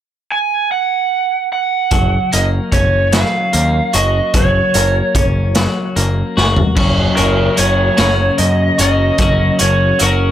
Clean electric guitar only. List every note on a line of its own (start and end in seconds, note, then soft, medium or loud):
1.92 3.13 F#3 medium
2.33 3.53 A#3 medium
2.73 4.75 C#4 medium
3.13 4.33 F#3 medium
3.53 4.74 A#3 medium
3.94 5.96 F#4 medium
4.34 5.55 F#3 medium
4.75 5.95 A#3 medium
5.16 6.77 C#4 medium
5.56 6.76 F#3 medium
5.96 6.77 A#3 medium
6.37 6.77 F#4 medium
6.76 8.00 F#2 medium
6.76 7.58 C#3 medium
6.76 7.20 F#3 medium
6.76 7.18 A#3 medium
6.76 7.17 C#4 medium
6.76 7.16 F#4 medium
7.16 7.56 F#3 soft
7.16 7.57 A#3 medium
7.16 7.59 C#4 medium
7.16 7.59 F#4 medium
7.56 7.99 F#3 medium
7.56 7.98 A#3 medium
7.56 7.96 C#4 medium
7.56 7.97 F#4 medium
7.97 9.17 F#2 medium
7.97 9.18 C#3 medium
7.97 8.81 F#3 medium
7.97 8.80 A#3 medium
7.97 8.78 C#4 medium
7.97 8.78 F#4 medium
8.78 9.20 F#3 soft
8.78 9.21 A#3 medium
8.78 9.20 C#4 medium
8.78 9.22 F#4 medium
9.18 10.00 F#2 medium
9.18 10.01 C#3 medium
9.18 9.62 F#3 medium
9.18 9.61 A#3 medium
9.18 9.59 C#4 medium
9.18 9.58 F#4 medium
9.59 9.98 F#3 soft
9.59 10.00 A#3 soft
9.59 10.00 C#4 medium
9.59 10.02 F#4 medium
9.99 10.31 F#3 medium
9.99 10.31 A#3 medium
9.99 10.31 C#4 medium
9.99 10.31 F#4 medium